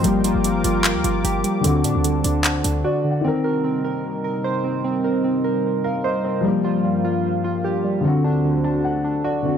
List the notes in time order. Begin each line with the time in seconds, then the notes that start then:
Already playing: G5
0.01 G1 F3 G3 A#3 A#4 F5 D6, closed hi-hat
0.08 G4
0.24 F4, closed hi-hat
0.35 G1
0.44 G3, closed hi-hat
0.64 G1 F4, closed hi-hat
0.84 clap, closed hi-hat
0.95 D2
1.04 G1 F4, closed hi-hat
1.24 G1 G4, closed hi-hat
1.44 G3, closed hi-hat
1.61 D2 D3 C4 C5 F#5 A5, closed hi-hat
1.68 F#4
1.84 A2 D4, closed hi-hat
1.95 D2
2.04 D3, closed hi-hat
2.24 D2 D4, closed hi-hat
2.44 clap, closed hi-hat
2.64 D2 D4, closed hi-hat
2.84 F#4 D5
3.04 D3
3.11 F#5
3.21 C3 D#3 G3 C4 A#4 D#5
3.28 A#4
3.44 A#4
3.64 C4
3.84 A#4
4.24 A#4
4.44 C5
4.64 C4
4.84 C4
5.04 A#4
5.24 C4
5.44 A#4
5.84 A#4 F5
6.04 C5 D#5
6.24 C4 C5
6.41 G2 F3 G3 A#3 F5
6.48 G4
6.64 F4
6.84 G3
7.05 F4
7.44 F4
7.64 G4
7.84 G3
8.01 D2 D3 C4 F#4 C5
8.08 F#4
8.24 D4
8.44 D3
8.64 D4 A5
8.84 F#5
9.04 D4
9.24 F#4 D5
9.43 D3 C4 F#4